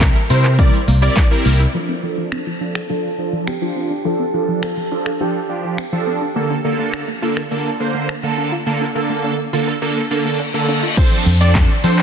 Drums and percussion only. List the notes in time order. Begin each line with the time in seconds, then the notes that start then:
0.01 kick, snare, clap, closed hi-hat, shaker
0.16 shaker
0.30 open hi-hat, shaker
0.45 clap, shaker
0.59 kick, closed hi-hat, shaker
0.74 shaker
0.88 open hi-hat, shaker
1.02 shaker
1.17 kick, snare, clap, closed hi-hat, shaker
1.31 shaker
1.45 open hi-hat, shaker
1.60 shaker
2.32 finger snap
2.75 finger snap
3.48 finger snap
4.63 finger snap
5.06 finger snap
5.78 finger snap
6.94 finger snap
7.37 finger snap
8.09 finger snap
10.97 kick, closed hi-hat, crash, shaker
11.12 shaker
11.26 open hi-hat, shaker
11.41 shaker
11.55 kick, snare, clap, closed hi-hat, shaker
11.69 shaker
11.84 open hi-hat, shaker
11.98 clap, shaker